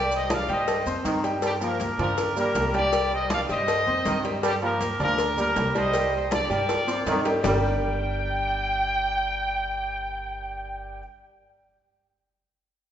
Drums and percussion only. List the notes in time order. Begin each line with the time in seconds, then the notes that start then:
0.12 high conga, maracas
0.30 cowbell, high conga, low agogo, maracas
0.49 high conga, low agogo, maracas
0.68 cowbell, high conga, low agogo, maracas
0.86 high conga, maracas
1.05 cowbell, high conga, low agogo, maracas
1.24 cowbell, maracas
1.42 cowbell, high conga, low agogo, maracas
1.61 high conga, low agogo, maracas
1.80 cowbell, high conga, maracas
1.99 high conga, low conga, low agogo, maracas
2.18 cowbell, high conga, low agogo, maracas
2.37 high conga, maracas
2.55 cowbell, high conga, low timbale, low agogo, maracas
2.74 high conga, low agogo, maracas
2.93 cowbell, high conga, low agogo, maracas
3.12 high conga
3.30 cowbell, high conga, low agogo, maracas
3.49 high conga, low agogo, maracas
3.68 cowbell, high conga, low agogo, maracas
3.87 high conga
4.05 cowbell, high conga, low agogo, maracas
4.24 cowbell, high conga, maracas
4.43 cowbell, high conga, low agogo, maracas
4.62 high conga, low agogo
4.81 cowbell, high conga, maracas
5.00 high conga, low conga, low agogo, maracas
5.18 cowbell, high conga, low agogo, maracas
5.38 high conga, maracas
5.56 cowbell, high conga, low timbale, low agogo, maracas
5.75 high conga, low agogo, maracas
5.93 cowbell, high conga, low agogo, maracas
6.13 high conga
6.31 cowbell, high conga, low agogo, maracas
6.51 high conga, low agogo, maracas
6.69 cowbell, high conga, high timbale, low agogo, maracas
6.88 high conga, high timbale, maracas
7.06 cowbell, high conga, low timbale, low agogo, maracas
7.25 cowbell, low timbale, maracas
7.44 low bongo, low conga, low timbale, maracas